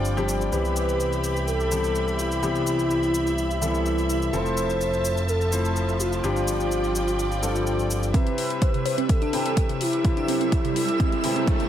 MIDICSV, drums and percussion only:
0, 0, Header, 1, 2, 480
1, 0, Start_track
1, 0, Key_signature, 0, "major"
1, 0, Tempo, 476190
1, 527, Time_signature, 4, 2, 24, 8
1, 11781, End_track
2, 0, Start_track
2, 0, Title_t, "Drums"
2, 50, Note_on_c, 9, 69, 41
2, 150, Note_off_c, 9, 69, 0
2, 175, Note_on_c, 9, 69, 21
2, 276, Note_off_c, 9, 69, 0
2, 289, Note_on_c, 9, 69, 71
2, 390, Note_off_c, 9, 69, 0
2, 414, Note_on_c, 9, 69, 31
2, 515, Note_off_c, 9, 69, 0
2, 530, Note_on_c, 9, 69, 43
2, 630, Note_off_c, 9, 69, 0
2, 654, Note_on_c, 9, 69, 21
2, 755, Note_off_c, 9, 69, 0
2, 769, Note_on_c, 9, 69, 71
2, 870, Note_off_c, 9, 69, 0
2, 895, Note_on_c, 9, 69, 31
2, 995, Note_off_c, 9, 69, 0
2, 1009, Note_on_c, 9, 69, 45
2, 1110, Note_off_c, 9, 69, 0
2, 1134, Note_on_c, 9, 69, 22
2, 1235, Note_off_c, 9, 69, 0
2, 1249, Note_on_c, 9, 69, 71
2, 1350, Note_off_c, 9, 69, 0
2, 1375, Note_on_c, 9, 69, 33
2, 1475, Note_off_c, 9, 69, 0
2, 1489, Note_on_c, 9, 69, 43
2, 1590, Note_off_c, 9, 69, 0
2, 1614, Note_on_c, 9, 69, 22
2, 1715, Note_off_c, 9, 69, 0
2, 1729, Note_on_c, 9, 69, 76
2, 1830, Note_off_c, 9, 69, 0
2, 1855, Note_on_c, 9, 69, 33
2, 1955, Note_off_c, 9, 69, 0
2, 1969, Note_on_c, 9, 69, 42
2, 2070, Note_off_c, 9, 69, 0
2, 2094, Note_on_c, 9, 69, 21
2, 2195, Note_off_c, 9, 69, 0
2, 2209, Note_on_c, 9, 69, 71
2, 2309, Note_off_c, 9, 69, 0
2, 2334, Note_on_c, 9, 69, 31
2, 2435, Note_off_c, 9, 69, 0
2, 2449, Note_on_c, 9, 69, 44
2, 2550, Note_off_c, 9, 69, 0
2, 2574, Note_on_c, 9, 69, 22
2, 2675, Note_off_c, 9, 69, 0
2, 2688, Note_on_c, 9, 69, 76
2, 2789, Note_off_c, 9, 69, 0
2, 2814, Note_on_c, 9, 69, 32
2, 2915, Note_off_c, 9, 69, 0
2, 2929, Note_on_c, 9, 69, 47
2, 3030, Note_off_c, 9, 69, 0
2, 3054, Note_on_c, 9, 69, 23
2, 3155, Note_off_c, 9, 69, 0
2, 3169, Note_on_c, 9, 69, 72
2, 3270, Note_off_c, 9, 69, 0
2, 3294, Note_on_c, 9, 69, 33
2, 3395, Note_off_c, 9, 69, 0
2, 3409, Note_on_c, 9, 69, 45
2, 3510, Note_off_c, 9, 69, 0
2, 3535, Note_on_c, 9, 69, 22
2, 3635, Note_off_c, 9, 69, 0
2, 3649, Note_on_c, 9, 69, 76
2, 3750, Note_off_c, 9, 69, 0
2, 3774, Note_on_c, 9, 69, 33
2, 3875, Note_off_c, 9, 69, 0
2, 3889, Note_on_c, 9, 69, 44
2, 3989, Note_off_c, 9, 69, 0
2, 4015, Note_on_c, 9, 69, 22
2, 4115, Note_off_c, 9, 69, 0
2, 4129, Note_on_c, 9, 69, 76
2, 4230, Note_off_c, 9, 69, 0
2, 4254, Note_on_c, 9, 69, 33
2, 4355, Note_off_c, 9, 69, 0
2, 4369, Note_on_c, 9, 69, 46
2, 4470, Note_off_c, 9, 69, 0
2, 4494, Note_on_c, 9, 69, 22
2, 4595, Note_off_c, 9, 69, 0
2, 4609, Note_on_c, 9, 69, 77
2, 4710, Note_off_c, 9, 69, 0
2, 4734, Note_on_c, 9, 69, 33
2, 4835, Note_off_c, 9, 69, 0
2, 4849, Note_on_c, 9, 69, 46
2, 4949, Note_off_c, 9, 69, 0
2, 4973, Note_on_c, 9, 69, 22
2, 5074, Note_off_c, 9, 69, 0
2, 5088, Note_on_c, 9, 69, 76
2, 5189, Note_off_c, 9, 69, 0
2, 5214, Note_on_c, 9, 69, 34
2, 5314, Note_off_c, 9, 69, 0
2, 5328, Note_on_c, 9, 69, 45
2, 5429, Note_off_c, 9, 69, 0
2, 5454, Note_on_c, 9, 69, 22
2, 5555, Note_off_c, 9, 69, 0
2, 5568, Note_on_c, 9, 69, 79
2, 5669, Note_off_c, 9, 69, 0
2, 5694, Note_on_c, 9, 69, 35
2, 5795, Note_off_c, 9, 69, 0
2, 5808, Note_on_c, 9, 69, 45
2, 5909, Note_off_c, 9, 69, 0
2, 5934, Note_on_c, 9, 69, 23
2, 6035, Note_off_c, 9, 69, 0
2, 6048, Note_on_c, 9, 69, 78
2, 6149, Note_off_c, 9, 69, 0
2, 6174, Note_on_c, 9, 69, 34
2, 6275, Note_off_c, 9, 69, 0
2, 6289, Note_on_c, 9, 69, 44
2, 6390, Note_off_c, 9, 69, 0
2, 6414, Note_on_c, 9, 69, 23
2, 6515, Note_off_c, 9, 69, 0
2, 6528, Note_on_c, 9, 69, 79
2, 6629, Note_off_c, 9, 69, 0
2, 6654, Note_on_c, 9, 69, 33
2, 6755, Note_off_c, 9, 69, 0
2, 6769, Note_on_c, 9, 69, 46
2, 6870, Note_off_c, 9, 69, 0
2, 6894, Note_on_c, 9, 69, 23
2, 6995, Note_off_c, 9, 69, 0
2, 7009, Note_on_c, 9, 69, 73
2, 7110, Note_off_c, 9, 69, 0
2, 7135, Note_on_c, 9, 69, 33
2, 7236, Note_off_c, 9, 69, 0
2, 7249, Note_on_c, 9, 69, 45
2, 7350, Note_off_c, 9, 69, 0
2, 7375, Note_on_c, 9, 69, 23
2, 7476, Note_off_c, 9, 69, 0
2, 7489, Note_on_c, 9, 69, 76
2, 7590, Note_off_c, 9, 69, 0
2, 7615, Note_on_c, 9, 69, 35
2, 7716, Note_off_c, 9, 69, 0
2, 7729, Note_on_c, 9, 69, 43
2, 7830, Note_off_c, 9, 69, 0
2, 7855, Note_on_c, 9, 69, 23
2, 7956, Note_off_c, 9, 69, 0
2, 7969, Note_on_c, 9, 69, 78
2, 8070, Note_off_c, 9, 69, 0
2, 8094, Note_on_c, 9, 69, 33
2, 8195, Note_off_c, 9, 69, 0
2, 8207, Note_on_c, 9, 36, 111
2, 8207, Note_on_c, 9, 42, 93
2, 8308, Note_off_c, 9, 36, 0
2, 8308, Note_off_c, 9, 42, 0
2, 8332, Note_on_c, 9, 42, 40
2, 8433, Note_off_c, 9, 42, 0
2, 8447, Note_on_c, 9, 46, 99
2, 8548, Note_off_c, 9, 46, 0
2, 8572, Note_on_c, 9, 42, 40
2, 8673, Note_off_c, 9, 42, 0
2, 8687, Note_on_c, 9, 36, 101
2, 8687, Note_on_c, 9, 42, 98
2, 8787, Note_off_c, 9, 42, 0
2, 8788, Note_off_c, 9, 36, 0
2, 8812, Note_on_c, 9, 42, 39
2, 8913, Note_off_c, 9, 42, 0
2, 8926, Note_on_c, 9, 46, 100
2, 9027, Note_off_c, 9, 46, 0
2, 9052, Note_on_c, 9, 42, 41
2, 9153, Note_off_c, 9, 42, 0
2, 9166, Note_on_c, 9, 42, 98
2, 9167, Note_on_c, 9, 36, 114
2, 9267, Note_off_c, 9, 42, 0
2, 9268, Note_off_c, 9, 36, 0
2, 9292, Note_on_c, 9, 42, 41
2, 9393, Note_off_c, 9, 42, 0
2, 9406, Note_on_c, 9, 46, 101
2, 9507, Note_off_c, 9, 46, 0
2, 9532, Note_on_c, 9, 42, 42
2, 9632, Note_off_c, 9, 42, 0
2, 9646, Note_on_c, 9, 42, 92
2, 9647, Note_on_c, 9, 36, 104
2, 9747, Note_off_c, 9, 42, 0
2, 9748, Note_off_c, 9, 36, 0
2, 9771, Note_on_c, 9, 42, 39
2, 9872, Note_off_c, 9, 42, 0
2, 9886, Note_on_c, 9, 46, 103
2, 9987, Note_off_c, 9, 46, 0
2, 10011, Note_on_c, 9, 42, 39
2, 10112, Note_off_c, 9, 42, 0
2, 10126, Note_on_c, 9, 42, 89
2, 10127, Note_on_c, 9, 36, 116
2, 10227, Note_off_c, 9, 42, 0
2, 10228, Note_off_c, 9, 36, 0
2, 10252, Note_on_c, 9, 42, 39
2, 10353, Note_off_c, 9, 42, 0
2, 10366, Note_on_c, 9, 46, 103
2, 10467, Note_off_c, 9, 46, 0
2, 10492, Note_on_c, 9, 42, 39
2, 10593, Note_off_c, 9, 42, 0
2, 10606, Note_on_c, 9, 42, 93
2, 10607, Note_on_c, 9, 36, 108
2, 10707, Note_off_c, 9, 36, 0
2, 10707, Note_off_c, 9, 42, 0
2, 10732, Note_on_c, 9, 42, 39
2, 10833, Note_off_c, 9, 42, 0
2, 10847, Note_on_c, 9, 46, 106
2, 10948, Note_off_c, 9, 46, 0
2, 10973, Note_on_c, 9, 42, 38
2, 11073, Note_off_c, 9, 42, 0
2, 11087, Note_on_c, 9, 36, 120
2, 11087, Note_on_c, 9, 42, 91
2, 11188, Note_off_c, 9, 36, 0
2, 11188, Note_off_c, 9, 42, 0
2, 11213, Note_on_c, 9, 42, 39
2, 11314, Note_off_c, 9, 42, 0
2, 11327, Note_on_c, 9, 46, 110
2, 11428, Note_off_c, 9, 46, 0
2, 11452, Note_on_c, 9, 42, 39
2, 11553, Note_off_c, 9, 42, 0
2, 11567, Note_on_c, 9, 36, 109
2, 11567, Note_on_c, 9, 42, 87
2, 11667, Note_off_c, 9, 36, 0
2, 11668, Note_off_c, 9, 42, 0
2, 11692, Note_on_c, 9, 42, 40
2, 11781, Note_off_c, 9, 42, 0
2, 11781, End_track
0, 0, End_of_file